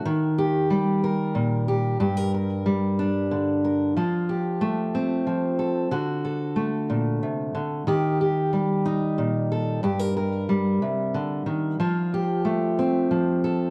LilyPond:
\new Staff \with { instrumentName = "Steel-string acoustic guitar" } { \time 6/8 \key g \minor \tempo 4. = 61 << { r8 g'4 bes'4 g'8 | g'16 bes'16 bes'4 d'4 bes'8 | f'8 g'4 c'4 a'8 | fis'8 a'2~ a'8 |
g'8 g'4 ees'4 a'8 | g'16 bes'16 bes'2~ bes'8 | f'8 g'4 c'4 a'8 | } \\ { ees4 g4 bes,4 | g,4 g4 d4 | f4 a4 f4 | d4 a8 bes,8 c8 d8 |
ees4 g4 bes,4 | g,4 g8 c8 d8 ees8 | f4 a4 f4 | } >> }